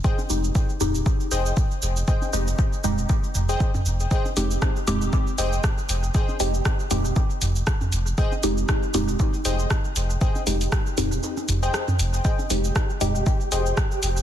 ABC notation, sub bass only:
X:1
M:4/4
L:1/8
Q:"Swing 16ths" 1/4=118
K:Fm
V:1 name="Sub bass" clef=bass
z F,,, z E,,, z F,,, z F,,, | z F,,, z E,,, z F,,, z F,,, | z F,,, z E,,, z F,,, z F,,, | z F,,, z E,,, z F,,, z F,,, |
z F,,, z E,,, z F,,, z F,,, | z F,,, z E,,, z F,,, z F,,, | z F,,, z E,,, z F,,, z F,,, |]